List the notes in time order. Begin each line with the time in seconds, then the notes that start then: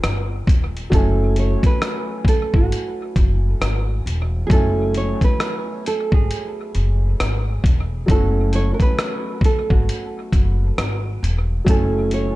Already playing: F3 G#3 C4 D#4 A#4
0.03 G1, cross-stick, closed hi-hat
0.47 D#1, kick, closed hi-hat
0.77 closed hi-hat
0.90 F#1 F#3 A3 C#4, kick, closed hi-hat
0.94 E4 A4 G#5
1.36 C#5, closed hi-hat
1.63 B4, kick, closed hi-hat
1.82 cross-stick, closed hi-hat
2.25 A4, kick, closed hi-hat
2.54 G#1 F#4, kick
2.72 closed hi-hat
3.16 F#1, kick, closed hi-hat
3.61 G#1, cross-stick, closed hi-hat
4.06 E1, closed hi-hat
4.47 F#1 F#3 A3 G#4, kick
4.51 C#4 E4 A4 G#5, closed hi-hat
4.95 C#5, closed hi-hat
5.21 B4, kick, closed hi-hat
5.40 cross-stick, closed hi-hat
5.86 A4, closed hi-hat
6.12 G#1 G#4, kick
6.31 closed hi-hat
6.75 F#1, closed hi-hat
7.20 G#1, cross-stick, closed hi-hat
7.64 E1, kick, closed hi-hat
8.06 F#1 F#3 A3 C#4, kick, closed hi-hat
8.11 E4 F#4 A4
8.53 C#5, closed hi-hat
8.74 A#4
8.80 B4, kick, closed hi-hat
8.99 cross-stick, closed hi-hat
9.41 kick, closed hi-hat
9.45 A4
9.70 G#1 F#4, kick
9.89 closed hi-hat
10.32 F#1, kick, closed hi-hat
10.78 G#1, cross-stick, closed hi-hat
11.23 E1, closed hi-hat
11.64 F#1 F#3 A3 C#4, kick, closed hi-hat
11.69 E4 A4 G#5
12.11 C#5, closed hi-hat